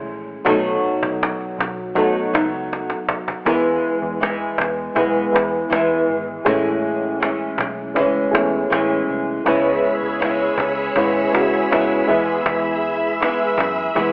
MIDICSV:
0, 0, Header, 1, 6, 480
1, 0, Start_track
1, 0, Key_signature, 4, "major"
1, 0, Tempo, 750000
1, 294, Time_signature, 4, 2, 24, 8
1, 9039, End_track
2, 0, Start_track
2, 0, Title_t, "String machine"
2, 0, Program_c, 0, 50
2, 6055, Note_on_c, 0, 83, 66
2, 6055, Note_on_c, 0, 88, 78
2, 6056, Note_on_c, 0, 73, 69
2, 6059, Note_on_c, 0, 68, 75
2, 7718, Note_off_c, 0, 73, 0
2, 7718, Note_off_c, 0, 83, 0
2, 7718, Note_off_c, 0, 88, 0
2, 7733, Note_on_c, 0, 76, 68
2, 7733, Note_on_c, 0, 83, 76
2, 7736, Note_on_c, 0, 88, 87
2, 9039, Note_off_c, 0, 68, 0
2, 9039, Note_off_c, 0, 76, 0
2, 9039, Note_off_c, 0, 83, 0
2, 9039, Note_off_c, 0, 88, 0
2, 9039, End_track
3, 0, Start_track
3, 0, Title_t, "Reed electric piano"
3, 0, Program_c, 1, 4
3, 0, Control_c, 1, 64, 127
3, 0, Note_on_c, 1, 52, 82
3, 0, Note_on_c, 1, 57, 80
3, 0, Note_on_c, 1, 61, 75
3, 0, Note_on_c, 1, 68, 86
3, 113, Note_off_c, 1, 52, 0
3, 115, Note_off_c, 1, 57, 0
3, 118, Note_off_c, 1, 61, 0
3, 120, Note_off_c, 1, 68, 0
3, 286, Note_on_c, 1, 54, 79
3, 292, Note_on_c, 1, 59, 81
3, 298, Note_on_c, 1, 63, 78
3, 303, Control_c, 1, 64, 0
3, 303, Note_on_c, 1, 69, 91
3, 419, Control_c, 1, 64, 127
3, 1073, Note_off_c, 1, 54, 0
3, 1076, Note_off_c, 1, 59, 0
3, 1079, Note_off_c, 1, 63, 0
3, 1081, Note_off_c, 1, 69, 0
3, 1250, Note_on_c, 1, 54, 82
3, 1256, Note_on_c, 1, 59, 72
3, 1262, Note_on_c, 1, 63, 72
3, 1266, Note_on_c, 1, 69, 84
3, 2035, Note_off_c, 1, 54, 0
3, 2038, Note_off_c, 1, 59, 0
3, 2041, Note_off_c, 1, 63, 0
3, 2043, Note_off_c, 1, 69, 0
3, 2209, Note_on_c, 1, 56, 77
3, 2213, Note_on_c, 1, 59, 73
3, 2219, Note_on_c, 1, 64, 77
3, 2222, Control_c, 1, 64, 0
3, 2225, Note_on_c, 1, 70, 70
3, 2261, Note_off_c, 1, 70, 0
3, 2266, Note_on_c, 1, 71, 87
3, 2326, Control_c, 1, 64, 127
3, 2995, Note_off_c, 1, 56, 0
3, 2996, Note_off_c, 1, 59, 0
3, 3000, Note_off_c, 1, 64, 0
3, 3023, Note_off_c, 1, 71, 0
3, 3169, Note_on_c, 1, 56, 77
3, 3175, Note_on_c, 1, 59, 71
3, 3180, Note_on_c, 1, 64, 71
3, 3184, Note_on_c, 1, 71, 83
3, 3367, Note_off_c, 1, 56, 0
3, 3371, Note_off_c, 1, 59, 0
3, 3373, Note_off_c, 1, 64, 0
3, 3375, Note_off_c, 1, 71, 0
3, 3408, Note_on_c, 1, 56, 74
3, 3412, Note_on_c, 1, 59, 63
3, 3417, Note_on_c, 1, 64, 65
3, 3422, Note_on_c, 1, 71, 83
3, 3998, Note_off_c, 1, 56, 0
3, 4001, Note_off_c, 1, 59, 0
3, 4003, Note_off_c, 1, 64, 0
3, 4005, Note_off_c, 1, 71, 0
3, 4127, Note_on_c, 1, 68, 83
3, 4132, Note_on_c, 1, 61, 74
3, 4138, Note_on_c, 1, 64, 73
3, 4142, Control_c, 1, 64, 0
3, 4145, Note_on_c, 1, 57, 85
3, 4268, Control_c, 1, 64, 127
3, 4913, Note_off_c, 1, 68, 0
3, 4916, Note_off_c, 1, 61, 0
3, 4919, Note_off_c, 1, 64, 0
3, 4923, Note_off_c, 1, 57, 0
3, 5082, Note_on_c, 1, 56, 74
3, 5089, Note_on_c, 1, 61, 72
3, 5094, Note_on_c, 1, 64, 74
3, 5100, Note_on_c, 1, 71, 88
3, 5284, Note_off_c, 1, 56, 0
3, 5287, Note_off_c, 1, 61, 0
3, 5290, Note_off_c, 1, 64, 0
3, 5293, Note_off_c, 1, 71, 0
3, 5322, Note_on_c, 1, 68, 80
3, 5328, Note_on_c, 1, 59, 58
3, 5333, Note_on_c, 1, 64, 70
3, 5340, Note_on_c, 1, 57, 80
3, 5370, Note_on_c, 1, 61, 73
3, 5373, Note_off_c, 1, 59, 0
3, 5916, Note_off_c, 1, 68, 0
3, 5921, Note_off_c, 1, 64, 0
3, 5924, Note_off_c, 1, 57, 0
3, 5940, Note_off_c, 1, 61, 0
3, 6046, Note_on_c, 1, 56, 81
3, 6053, Note_on_c, 1, 61, 81
3, 6056, Note_on_c, 1, 64, 75
3, 6063, Note_on_c, 1, 71, 94
3, 6064, Control_c, 1, 64, 0
3, 6179, Control_c, 1, 64, 127
3, 6833, Note_off_c, 1, 56, 0
3, 6836, Note_off_c, 1, 61, 0
3, 6838, Note_off_c, 1, 64, 0
3, 6842, Note_off_c, 1, 71, 0
3, 7014, Note_on_c, 1, 56, 74
3, 7016, Note_on_c, 1, 61, 73
3, 7023, Note_on_c, 1, 64, 72
3, 7028, Note_on_c, 1, 71, 89
3, 7210, Note_off_c, 1, 56, 0
3, 7211, Note_off_c, 1, 61, 0
3, 7214, Note_off_c, 1, 64, 0
3, 7217, Note_off_c, 1, 71, 0
3, 7250, Note_on_c, 1, 56, 73
3, 7254, Note_on_c, 1, 61, 66
3, 7261, Note_on_c, 1, 64, 64
3, 7265, Note_on_c, 1, 66, 81
3, 7722, Note_off_c, 1, 56, 0
3, 7730, Note_on_c, 1, 56, 87
3, 7734, Note_off_c, 1, 61, 0
3, 7734, Note_off_c, 1, 64, 0
3, 7737, Note_on_c, 1, 59, 78
3, 7739, Note_off_c, 1, 66, 0
3, 7742, Control_c, 1, 64, 0
3, 7742, Note_on_c, 1, 64, 81
3, 7746, Note_on_c, 1, 71, 98
3, 7843, Control_c, 1, 64, 127
3, 8515, Note_off_c, 1, 56, 0
3, 8519, Note_off_c, 1, 59, 0
3, 8521, Note_off_c, 1, 64, 0
3, 8523, Note_off_c, 1, 71, 0
3, 8932, Note_on_c, 1, 56, 77
3, 8936, Note_on_c, 1, 59, 69
3, 8943, Note_on_c, 1, 64, 73
3, 8946, Note_on_c, 1, 71, 80
3, 9039, Note_off_c, 1, 56, 0
3, 9039, Note_off_c, 1, 59, 0
3, 9039, Note_off_c, 1, 64, 0
3, 9039, Note_off_c, 1, 71, 0
3, 9039, End_track
4, 0, Start_track
4, 0, Title_t, "Nylon-string guitar"
4, 0, Program_c, 2, 24
4, 0, Note_on_c, 2, 56, 48
4, 0, Note_on_c, 2, 61, 53
4, 0, Note_on_c, 2, 64, 59
4, 286, Note_on_c, 2, 47, 87
4, 293, Note_off_c, 2, 64, 0
4, 295, Note_off_c, 2, 56, 0
4, 298, Note_off_c, 2, 61, 0
4, 298, Note_on_c, 2, 54, 84
4, 308, Note_on_c, 2, 57, 77
4, 316, Note_on_c, 2, 63, 95
4, 1241, Note_off_c, 2, 47, 0
4, 1249, Note_off_c, 2, 54, 0
4, 1249, Note_on_c, 2, 47, 63
4, 1257, Note_off_c, 2, 57, 0
4, 1257, Note_on_c, 2, 54, 62
4, 1264, Note_off_c, 2, 63, 0
4, 1265, Note_on_c, 2, 57, 68
4, 1271, Note_on_c, 2, 63, 70
4, 1486, Note_off_c, 2, 63, 0
4, 1492, Note_off_c, 2, 47, 0
4, 1493, Note_on_c, 2, 63, 59
4, 1496, Note_off_c, 2, 54, 0
4, 1499, Note_off_c, 2, 57, 0
4, 1506, Note_on_c, 2, 57, 50
4, 1514, Note_on_c, 2, 54, 48
4, 2212, Note_on_c, 2, 52, 78
4, 2214, Note_off_c, 2, 63, 0
4, 2216, Note_off_c, 2, 54, 0
4, 2219, Note_on_c, 2, 56, 87
4, 2220, Note_off_c, 2, 57, 0
4, 2222, Note_on_c, 2, 59, 81
4, 2227, Note_on_c, 2, 64, 88
4, 2689, Note_off_c, 2, 52, 0
4, 2692, Note_on_c, 2, 52, 53
4, 2695, Note_off_c, 2, 56, 0
4, 2697, Note_off_c, 2, 59, 0
4, 2697, Note_on_c, 2, 56, 60
4, 2704, Note_on_c, 2, 59, 54
4, 2708, Note_off_c, 2, 64, 0
4, 2710, Note_on_c, 2, 64, 60
4, 3167, Note_off_c, 2, 52, 0
4, 3169, Note_on_c, 2, 52, 66
4, 3177, Note_off_c, 2, 56, 0
4, 3178, Note_off_c, 2, 59, 0
4, 3179, Note_on_c, 2, 56, 65
4, 3186, Note_on_c, 2, 59, 64
4, 3188, Note_off_c, 2, 64, 0
4, 3190, Note_on_c, 2, 64, 68
4, 3645, Note_off_c, 2, 52, 0
4, 3647, Note_on_c, 2, 52, 70
4, 3654, Note_off_c, 2, 56, 0
4, 3654, Note_off_c, 2, 59, 0
4, 3656, Note_on_c, 2, 56, 72
4, 3661, Note_on_c, 2, 59, 69
4, 3668, Note_off_c, 2, 64, 0
4, 3671, Note_on_c, 2, 64, 76
4, 4129, Note_on_c, 2, 45, 80
4, 4130, Note_off_c, 2, 52, 0
4, 4132, Note_on_c, 2, 52, 75
4, 4134, Note_off_c, 2, 56, 0
4, 4136, Note_on_c, 2, 56, 83
4, 4138, Note_off_c, 2, 59, 0
4, 4141, Note_off_c, 2, 64, 0
4, 4141, Note_on_c, 2, 61, 83
4, 4144, Note_on_c, 2, 64, 95
4, 4606, Note_off_c, 2, 52, 0
4, 4608, Note_on_c, 2, 52, 50
4, 4612, Note_off_c, 2, 45, 0
4, 4614, Note_off_c, 2, 56, 0
4, 4617, Note_on_c, 2, 56, 57
4, 4622, Note_off_c, 2, 61, 0
4, 4625, Note_on_c, 2, 61, 60
4, 4626, Note_off_c, 2, 64, 0
4, 4628, Note_on_c, 2, 64, 61
4, 5086, Note_off_c, 2, 52, 0
4, 5089, Note_on_c, 2, 52, 63
4, 5095, Note_off_c, 2, 56, 0
4, 5097, Note_on_c, 2, 56, 65
4, 5101, Note_off_c, 2, 61, 0
4, 5103, Note_on_c, 2, 61, 67
4, 5105, Note_off_c, 2, 64, 0
4, 5108, Note_on_c, 2, 64, 70
4, 5567, Note_off_c, 2, 52, 0
4, 5569, Note_on_c, 2, 52, 63
4, 5575, Note_off_c, 2, 56, 0
4, 5577, Note_on_c, 2, 56, 66
4, 5579, Note_off_c, 2, 61, 0
4, 5582, Note_on_c, 2, 61, 76
4, 5588, Note_off_c, 2, 64, 0
4, 5591, Note_on_c, 2, 64, 76
4, 6047, Note_off_c, 2, 52, 0
4, 6050, Note_on_c, 2, 49, 80
4, 6051, Note_off_c, 2, 56, 0
4, 6053, Note_on_c, 2, 56, 80
4, 6058, Note_off_c, 2, 61, 0
4, 6061, Note_on_c, 2, 59, 91
4, 6063, Note_off_c, 2, 64, 0
4, 6066, Note_on_c, 2, 64, 96
4, 6520, Note_off_c, 2, 49, 0
4, 6527, Note_on_c, 2, 49, 57
4, 6534, Note_off_c, 2, 56, 0
4, 6536, Note_on_c, 2, 56, 64
4, 6540, Note_off_c, 2, 59, 0
4, 6542, Note_on_c, 2, 59, 65
4, 6548, Note_off_c, 2, 64, 0
4, 6550, Note_on_c, 2, 64, 65
4, 7004, Note_off_c, 2, 49, 0
4, 7012, Note_on_c, 2, 49, 66
4, 7020, Note_off_c, 2, 56, 0
4, 7023, Note_on_c, 2, 56, 62
4, 7026, Note_off_c, 2, 59, 0
4, 7029, Note_on_c, 2, 59, 69
4, 7031, Note_off_c, 2, 64, 0
4, 7034, Note_on_c, 2, 64, 70
4, 7481, Note_off_c, 2, 49, 0
4, 7489, Note_on_c, 2, 49, 61
4, 7493, Note_off_c, 2, 56, 0
4, 7495, Note_on_c, 2, 56, 69
4, 7500, Note_off_c, 2, 59, 0
4, 7502, Note_on_c, 2, 59, 71
4, 7505, Note_off_c, 2, 64, 0
4, 7508, Note_on_c, 2, 64, 67
4, 7724, Note_off_c, 2, 64, 0
4, 7731, Note_off_c, 2, 49, 0
4, 7731, Note_off_c, 2, 59, 0
4, 7732, Note_on_c, 2, 64, 67
4, 7735, Note_off_c, 2, 56, 0
4, 7738, Note_on_c, 2, 59, 63
4, 7743, Note_on_c, 2, 56, 54
4, 7746, Note_on_c, 2, 52, 54
4, 8446, Note_off_c, 2, 52, 0
4, 8449, Note_on_c, 2, 52, 58
4, 8452, Note_off_c, 2, 56, 0
4, 8454, Note_on_c, 2, 56, 59
4, 8459, Note_off_c, 2, 59, 0
4, 8462, Note_on_c, 2, 59, 58
4, 8466, Note_off_c, 2, 64, 0
4, 8469, Note_on_c, 2, 64, 60
4, 8926, Note_off_c, 2, 52, 0
4, 8928, Note_on_c, 2, 52, 66
4, 8936, Note_off_c, 2, 56, 0
4, 8939, Note_on_c, 2, 56, 64
4, 8941, Note_off_c, 2, 59, 0
4, 8943, Note_on_c, 2, 59, 66
4, 8947, Note_off_c, 2, 64, 0
4, 8950, Note_on_c, 2, 64, 65
4, 9039, Note_off_c, 2, 52, 0
4, 9039, Note_off_c, 2, 56, 0
4, 9039, Note_off_c, 2, 59, 0
4, 9039, Note_off_c, 2, 64, 0
4, 9039, End_track
5, 0, Start_track
5, 0, Title_t, "Picked electric bass"
5, 0, Program_c, 3, 34
5, 53, Note_on_c, 3, 34, 90
5, 245, Note_off_c, 3, 34, 0
5, 293, Note_on_c, 3, 35, 107
5, 485, Note_off_c, 3, 35, 0
5, 657, Note_on_c, 3, 35, 102
5, 848, Note_off_c, 3, 35, 0
5, 1016, Note_on_c, 3, 35, 100
5, 1399, Note_off_c, 3, 35, 0
5, 1494, Note_on_c, 3, 37, 90
5, 1878, Note_off_c, 3, 37, 0
5, 2218, Note_on_c, 3, 40, 93
5, 2408, Note_off_c, 3, 40, 0
5, 2576, Note_on_c, 3, 40, 89
5, 2863, Note_off_c, 3, 40, 0
5, 2933, Note_on_c, 3, 40, 85
5, 3126, Note_off_c, 3, 40, 0
5, 3175, Note_on_c, 3, 35, 93
5, 3366, Note_off_c, 3, 35, 0
5, 3413, Note_on_c, 3, 40, 89
5, 3606, Note_off_c, 3, 40, 0
5, 3654, Note_on_c, 3, 40, 88
5, 3846, Note_off_c, 3, 40, 0
5, 3896, Note_on_c, 3, 32, 78
5, 4087, Note_off_c, 3, 32, 0
5, 4133, Note_on_c, 3, 33, 104
5, 4828, Note_off_c, 3, 33, 0
5, 4849, Note_on_c, 3, 35, 88
5, 5092, Note_off_c, 3, 35, 0
5, 5092, Note_on_c, 3, 37, 91
5, 5285, Note_off_c, 3, 37, 0
5, 5334, Note_on_c, 3, 40, 92
5, 5526, Note_off_c, 3, 40, 0
5, 5576, Note_on_c, 3, 33, 86
5, 5767, Note_off_c, 3, 33, 0
5, 5819, Note_on_c, 3, 36, 80
5, 6009, Note_off_c, 3, 36, 0
5, 6053, Note_on_c, 3, 37, 109
5, 6246, Note_off_c, 3, 37, 0
5, 6416, Note_on_c, 3, 37, 95
5, 6703, Note_off_c, 3, 37, 0
5, 6770, Note_on_c, 3, 37, 91
5, 6964, Note_off_c, 3, 37, 0
5, 7015, Note_on_c, 3, 32, 98
5, 7207, Note_off_c, 3, 32, 0
5, 7259, Note_on_c, 3, 37, 93
5, 7449, Note_off_c, 3, 37, 0
5, 7503, Note_on_c, 3, 37, 80
5, 7692, Note_off_c, 3, 37, 0
5, 7742, Note_on_c, 3, 40, 93
5, 7931, Note_off_c, 3, 40, 0
5, 7975, Note_on_c, 3, 40, 105
5, 8669, Note_off_c, 3, 40, 0
5, 8694, Note_on_c, 3, 42, 84
5, 8886, Note_off_c, 3, 42, 0
5, 8935, Note_on_c, 3, 52, 116
5, 9039, Note_off_c, 3, 52, 0
5, 9039, End_track
6, 0, Start_track
6, 0, Title_t, "Cajon"
6, 60, Note_on_c, 9, 38, 28
6, 124, Note_off_c, 9, 38, 0
6, 176, Note_on_c, 9, 38, 25
6, 240, Note_off_c, 9, 38, 0
6, 294, Note_on_c, 9, 36, 112
6, 358, Note_off_c, 9, 36, 0
6, 419, Note_on_c, 9, 38, 28
6, 483, Note_off_c, 9, 38, 0
6, 535, Note_on_c, 9, 38, 28
6, 599, Note_off_c, 9, 38, 0
6, 656, Note_on_c, 9, 36, 92
6, 720, Note_off_c, 9, 36, 0
6, 786, Note_on_c, 9, 38, 89
6, 850, Note_off_c, 9, 38, 0
6, 899, Note_on_c, 9, 38, 27
6, 963, Note_off_c, 9, 38, 0
6, 1028, Note_on_c, 9, 38, 87
6, 1092, Note_off_c, 9, 38, 0
6, 1140, Note_on_c, 9, 38, 24
6, 1204, Note_off_c, 9, 38, 0
6, 1254, Note_on_c, 9, 36, 79
6, 1318, Note_off_c, 9, 36, 0
6, 1381, Note_on_c, 9, 38, 29
6, 1445, Note_off_c, 9, 38, 0
6, 1504, Note_on_c, 9, 38, 98
6, 1568, Note_off_c, 9, 38, 0
6, 1617, Note_on_c, 9, 38, 29
6, 1681, Note_off_c, 9, 38, 0
6, 1742, Note_on_c, 9, 38, 36
6, 1748, Note_off_c, 9, 38, 0
6, 1748, Note_on_c, 9, 38, 57
6, 1812, Note_off_c, 9, 38, 0
6, 1856, Note_on_c, 9, 38, 59
6, 1920, Note_off_c, 9, 38, 0
6, 1976, Note_on_c, 9, 36, 90
6, 2040, Note_off_c, 9, 36, 0
6, 2100, Note_on_c, 9, 36, 80
6, 2164, Note_off_c, 9, 36, 0
6, 2217, Note_on_c, 9, 36, 105
6, 2281, Note_off_c, 9, 36, 0
6, 2341, Note_on_c, 9, 38, 29
6, 2405, Note_off_c, 9, 38, 0
6, 2458, Note_on_c, 9, 38, 27
6, 2522, Note_off_c, 9, 38, 0
6, 2582, Note_on_c, 9, 38, 25
6, 2646, Note_off_c, 9, 38, 0
6, 2708, Note_on_c, 9, 38, 84
6, 2772, Note_off_c, 9, 38, 0
6, 2820, Note_on_c, 9, 38, 26
6, 2884, Note_off_c, 9, 38, 0
6, 2933, Note_on_c, 9, 36, 82
6, 2953, Note_on_c, 9, 38, 77
6, 2997, Note_off_c, 9, 36, 0
6, 3017, Note_off_c, 9, 38, 0
6, 3064, Note_on_c, 9, 38, 24
6, 3128, Note_off_c, 9, 38, 0
6, 3175, Note_on_c, 9, 36, 80
6, 3239, Note_off_c, 9, 36, 0
6, 3302, Note_on_c, 9, 38, 28
6, 3366, Note_off_c, 9, 38, 0
6, 3429, Note_on_c, 9, 38, 92
6, 3493, Note_off_c, 9, 38, 0
6, 3538, Note_on_c, 9, 38, 26
6, 3602, Note_off_c, 9, 38, 0
6, 3665, Note_on_c, 9, 38, 96
6, 3729, Note_off_c, 9, 38, 0
6, 3776, Note_on_c, 9, 38, 29
6, 3840, Note_off_c, 9, 38, 0
6, 3900, Note_on_c, 9, 38, 27
6, 3964, Note_off_c, 9, 38, 0
6, 4016, Note_on_c, 9, 38, 27
6, 4080, Note_off_c, 9, 38, 0
6, 4135, Note_on_c, 9, 36, 109
6, 4199, Note_off_c, 9, 36, 0
6, 4254, Note_on_c, 9, 38, 30
6, 4318, Note_off_c, 9, 38, 0
6, 4372, Note_on_c, 9, 38, 26
6, 4436, Note_off_c, 9, 38, 0
6, 4496, Note_on_c, 9, 38, 27
6, 4560, Note_off_c, 9, 38, 0
6, 4624, Note_on_c, 9, 38, 87
6, 4688, Note_off_c, 9, 38, 0
6, 4738, Note_on_c, 9, 38, 29
6, 4802, Note_off_c, 9, 38, 0
6, 4850, Note_on_c, 9, 36, 80
6, 4865, Note_on_c, 9, 38, 82
6, 4914, Note_off_c, 9, 36, 0
6, 4929, Note_off_c, 9, 38, 0
6, 4982, Note_on_c, 9, 38, 23
6, 5046, Note_off_c, 9, 38, 0
6, 5094, Note_on_c, 9, 36, 89
6, 5158, Note_off_c, 9, 36, 0
6, 5218, Note_on_c, 9, 38, 29
6, 5282, Note_off_c, 9, 38, 0
6, 5343, Note_on_c, 9, 38, 97
6, 5407, Note_off_c, 9, 38, 0
6, 5456, Note_on_c, 9, 38, 26
6, 5520, Note_off_c, 9, 38, 0
6, 5584, Note_on_c, 9, 38, 95
6, 5648, Note_off_c, 9, 38, 0
6, 5696, Note_on_c, 9, 38, 28
6, 5760, Note_off_c, 9, 38, 0
6, 5818, Note_on_c, 9, 38, 27
6, 5882, Note_off_c, 9, 38, 0
6, 5935, Note_on_c, 9, 38, 26
6, 5999, Note_off_c, 9, 38, 0
6, 6055, Note_on_c, 9, 36, 106
6, 6119, Note_off_c, 9, 36, 0
6, 6174, Note_on_c, 9, 38, 30
6, 6238, Note_off_c, 9, 38, 0
6, 6294, Note_on_c, 9, 38, 27
6, 6358, Note_off_c, 9, 38, 0
6, 6416, Note_on_c, 9, 38, 27
6, 6480, Note_off_c, 9, 38, 0
6, 6540, Note_on_c, 9, 38, 81
6, 6604, Note_off_c, 9, 38, 0
6, 6653, Note_on_c, 9, 38, 28
6, 6717, Note_off_c, 9, 38, 0
6, 6769, Note_on_c, 9, 36, 81
6, 6783, Note_on_c, 9, 38, 82
6, 6833, Note_off_c, 9, 36, 0
6, 6847, Note_off_c, 9, 38, 0
6, 6895, Note_on_c, 9, 38, 25
6, 6959, Note_off_c, 9, 38, 0
6, 7013, Note_on_c, 9, 36, 84
6, 7077, Note_off_c, 9, 36, 0
6, 7137, Note_on_c, 9, 38, 29
6, 7201, Note_off_c, 9, 38, 0
6, 7262, Note_on_c, 9, 38, 95
6, 7326, Note_off_c, 9, 38, 0
6, 7375, Note_on_c, 9, 38, 28
6, 7439, Note_off_c, 9, 38, 0
6, 7504, Note_on_c, 9, 38, 94
6, 7568, Note_off_c, 9, 38, 0
6, 7612, Note_on_c, 9, 38, 30
6, 7676, Note_off_c, 9, 38, 0
6, 7850, Note_on_c, 9, 38, 25
6, 7914, Note_off_c, 9, 38, 0
6, 7974, Note_on_c, 9, 36, 109
6, 8038, Note_off_c, 9, 36, 0
6, 8094, Note_on_c, 9, 38, 28
6, 8158, Note_off_c, 9, 38, 0
6, 8214, Note_on_c, 9, 38, 29
6, 8278, Note_off_c, 9, 38, 0
6, 8341, Note_on_c, 9, 38, 27
6, 8405, Note_off_c, 9, 38, 0
6, 8465, Note_on_c, 9, 38, 85
6, 8529, Note_off_c, 9, 38, 0
6, 8577, Note_on_c, 9, 38, 26
6, 8641, Note_off_c, 9, 38, 0
6, 8692, Note_on_c, 9, 36, 83
6, 8708, Note_on_c, 9, 38, 85
6, 8756, Note_off_c, 9, 36, 0
6, 8772, Note_off_c, 9, 38, 0
6, 8820, Note_on_c, 9, 38, 24
6, 8884, Note_off_c, 9, 38, 0
6, 8936, Note_on_c, 9, 36, 81
6, 9000, Note_off_c, 9, 36, 0
6, 9039, End_track
0, 0, End_of_file